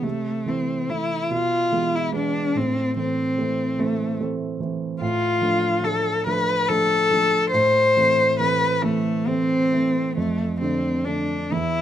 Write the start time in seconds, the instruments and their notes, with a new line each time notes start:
0.02 grand piano C3, cello A3
0.46 grand piano E3 A3 E4, cello C4
0.89 grand piano E3 A3 E4, cello E4
1.31 grand piano B2, cello F4
1.72 grand piano E3 G#3 B3
1.96 cello E4
2.13 grand piano E3 G#3 B3, cello D4
2.55 grand piano A2, cello C4
2.96 grand piano E3 A3 C4, cello C4
3.38 grand piano E3 A3 C4
3.79 grand piano E3 A3 C4, cello A3
4.20 grand piano E3 A3 C4
4.60 grand piano E3 A3 C4
5.01 grand piano A2, cello F4
5.41 grand piano F3 A3 D4
5.83 grand piano F3 A3 D4, cello A4
6.27 grand piano F3 A3 D4, cello B4
6.68 grand piano F3 A3 D4, cello A4
7.11 grand piano F3 A3 D4
7.52 grand piano A2, cello C5
7.97 grand piano E3 A3 C4
8.40 grand piano E3 A3 C4, cello B4
8.83 grand piano E3 A3 C4, cello A3
9.27 grand piano E3 A3 C4, cello C4
9.72 grand piano E3 A3 C4
10.17 grand piano F2, cello A3
10.60 grand piano D3 A3 D4, cello C4
11.05 grand piano D3 A3 D4, cello D4
11.52 grand piano E2, cello E4